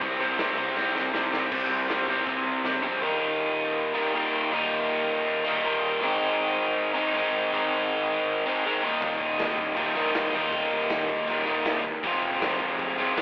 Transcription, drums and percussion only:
0.01 kick loud
0.01 open hi-hat medium
0.38 snare loud
0.38 open hi-hat medium
0.58 kick medium
0.77 kick loud
0.77 snare medium
0.96 snare medium
1.14 snare loud
1.34 snare loud
1.52 kick loud
1.52 crash loud
1.52 crash medium
1.89 snare loud
1.89 crash medium
2.08 kick medium
2.27 kick loud
2.27 crash medium
2.65 snare medium
2.83 floor tom loud
9.02 kick loud
9.02 crash medium
9.21 kick medium
9.39 snare loud
9.39 crash medium
9.58 kick medium
9.77 kick loud
9.77 crash medium
10.15 snare loud
10.15 crash medium
10.53 kick loud
10.53 crash medium
10.72 kick loud
10.90 snare loud
10.90 crash medium
11.09 kick medium
11.28 kick loud
11.28 crash medium
11.65 snare loud
11.65 crash medium
12.04 kick loud
12.04 crash medium
12.23 kick medium
12.42 snare loud
12.42 crash medium
12.60 kick medium
12.79 kick loud
12.79 crash medium
13.17 snare loud
13.17 crash medium

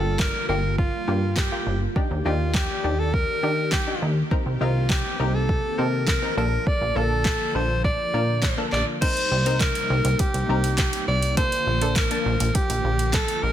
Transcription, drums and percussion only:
0.19 kick loud
0.19 snare medium
0.19 clap loud
0.78 kick loud
1.36 kick loud
1.36 snare medium
1.36 clap loud
1.96 kick loud
2.54 kick loud
2.54 snare medium
2.54 clap loud
3.14 kick loud
3.72 kick loud
3.72 snare medium
3.72 clap loud
4.31 kick loud
4.89 kick loud
4.89 snare medium
4.89 clap loud
5.49 kick loud
6.07 kick loud
6.07 snare medium
6.07 clap loud
6.67 kick loud
7.25 kick loud
7.25 snare medium
7.25 clap loud
7.84 kick loud
8.42 kick loud
8.42 snare medium
8.42 clap loud
8.73 clap medium
9.02 kick loud
9.02 closed hi-hat medium
9.02 crash loud
9.17 closed hi-hat medium
9.46 closed hi-hat medium
9.60 kick loud
9.60 snare medium
9.60 clap loud
9.60 closed hi-hat medium
9.75 closed hi-hat medium
10.05 closed hi-hat medium
10.19 kick loud
10.19 closed hi-hat medium
10.34 closed hi-hat medium
10.64 closed hi-hat medium
10.77 kick loud
10.77 snare medium
10.77 clap loud
10.77 closed hi-hat medium
10.93 closed hi-hat medium
11.23 closed hi-hat medium
11.37 kick loud
11.37 closed hi-hat medium
11.52 closed hi-hat medium
11.82 closed hi-hat medium
11.95 kick loud
11.95 snare medium
11.95 clap loud
11.95 closed hi-hat medium
12.11 closed hi-hat medium
12.40 closed hi-hat medium
12.55 kick loud
12.55 closed hi-hat medium
12.70 closed hi-hat medium
12.99 closed hi-hat medium
13.13 kick loud
13.13 snare medium
13.13 clap loud
13.13 closed hi-hat medium
13.28 closed hi-hat medium

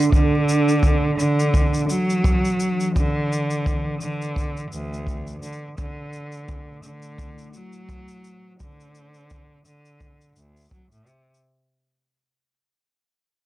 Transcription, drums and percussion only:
0.02 shaker medium
0.12 kick medium
0.12 shaker soft
0.49 shaker medium
0.69 shaker soft
0.83 kick medium
0.83 shaker medium
1.20 shaker medium
1.40 shaker soft
1.54 kick medium
1.54 shaker soft
1.74 shaker soft
1.90 shaker medium
2.10 shaker soft
2.24 kick medium
2.24 shaker medium
2.45 shaker soft
2.60 shaker medium
2.80 shaker soft
2.96 kick medium
2.96 shaker soft
3.33 shaker medium
3.51 shaker soft
3.66 kick medium
3.66 shaker soft
4.01 shaker medium
4.22 shaker soft
4.36 kick medium
4.36 shaker medium
4.57 shaker soft
4.73 shaker medium
4.93 shaker soft
5.07 kick medium
5.07 shaker medium
5.27 shaker soft
5.43 shaker medium
5.52 shaker soft
5.78 kick medium
5.78 shaker soft
6.13 shaker medium
6.32 shaker soft
6.48 kick medium
6.48 shaker medium
6.83 shaker medium
7.02 shaker soft
7.18 kick medium
7.18 shaker soft
7.38 shaker soft
7.54 shaker medium
7.73 shaker soft
7.89 kick medium
7.89 shaker medium
8.08 shaker soft
8.24 shaker medium
8.60 kick medium
8.60 shaker soft
8.80 shaker soft
8.95 shaker medium
9.14 shaker soft
9.30 kick medium
9.30 shaker soft
9.65 shaker medium
9.85 shaker soft
10.01 kick medium
10.01 shaker soft
10.21 shaker soft
10.36 shaker medium
10.57 shaker soft
10.60 shaker soft
10.64 shaker soft
10.68 kick medium
10.68 shaker soft
10.92 shaker soft
11.07 shaker medium
11.35 shaker soft

